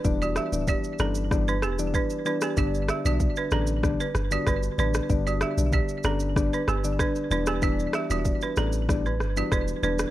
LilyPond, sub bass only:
\new Staff \with { instrumentName = "Sub bass" } { \clef bass \time 4/4 \key e \minor \tempo 4 = 95 e,,8. d,,8 r16 g,,4 e,,8. r8. | g,,8. b,,8 r16 a,,4 g,,8 g,,8 a,,8 | g,,8. b,,8 r16 g,,4 g,,8. r16 e,,8~ | e,,8. e,,8 r16 a,,4 g,,8 e,,8 e,,8 | }